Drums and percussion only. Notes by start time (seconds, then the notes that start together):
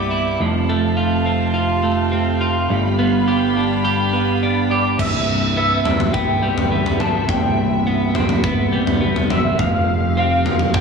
4.99 kick, floor tom, crash
5.85 floor tom
6.00 floor tom
6.14 kick, floor tom
6.58 floor tom
6.86 floor tom
7.00 floor tom
7.29 kick, floor tom
8.15 floor tom
8.29 floor tom
8.44 kick, floor tom
8.87 floor tom
9.16 floor tom
9.30 floor tom
9.59 kick, floor tom
10.46 floor tom
10.59 floor tom
10.74 kick, floor tom